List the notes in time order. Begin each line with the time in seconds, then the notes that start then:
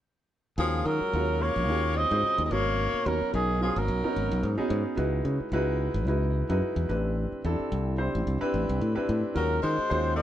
0.58 D#2 F3 G#3 C#4 F4 F#4 G#4 A#4
0.85 D#3 F#3 A#4
1.01 muted fingered electric bass stroke
1.13 D#2 G#3 C#4 F4 F#4 C#5
1.41 A#3 C#5
1.56 A#1
1.68 D#2 G#3 C#4 F4 F#4 G#4
1.96 C4 D#5
2.11 G#2 C#3 G#3 F4 F#4 C5
2.23 muted fingered electric bass stroke
2.38 D#2
2.45 C4 D#5
2.51 G#1 B2 A#3 C#4 D#4 F#4 A#4 C#5
2.94 muted fingered electric bass stroke
3.06 D#2 F#3 B3 C#4 D#4 F#4 A#4 C#5
3.22 muted fingered electric bass stroke
3.34 B1 D#3 G#4
3.61 F3 B3 C#4 D#4 F#4 G#4 A#4
3.76 G#1 F#3 A#4
3.88 B1
4.04 B3 C#4 D#4 F#4 A#4, muted fingered electric bass stroke
4.16 G#1
4.31 B1
4.43 G#2
4.57 B3 C#4 D#4 F#4 G#4, muted fingered electric bass stroke
4.70 G#2
4.96 C#2 G#3 D#4 E4 F#4 B4
5.25 C#3
5.40 muted fingered electric bass stroke
5.52 C#2 G#3 D#4 E4 F#4 B4
5.94 G#1
6.06 C#2 G#3 D#4 E4 F#4 B4
6.49 F#2 G#3 D#4 E4 F#4 B4
6.62 muted fingered electric bass stroke
6.76 E2
6.89 A1 C4 D4 E4 G4 B4
7.32 muted fingered electric bass stroke
7.44 E2 C4 D4 E4 G4 A4
7.60 muted fingered electric bass stroke
7.72 C2
7.98 C4 D4 E4 G4 C5
8.15 A1
8.27 C2
8.41 C4 D4 E4 G4 B4, muted fingered electric bass stroke
8.54 A1
8.69 C2
8.81 A2
8.95 C4 D4 E4 G4 B4, muted fingered electric bass stroke
9.09 A2
9.34 D#2 F#3 G#3 C#4 F4 F#4 A#4
9.62 D#3 G#3 C5
9.78 muted fingered electric bass stroke
9.90 D#2 G#3 C#4 F4 F#4 C5
10.16 A#3 D#5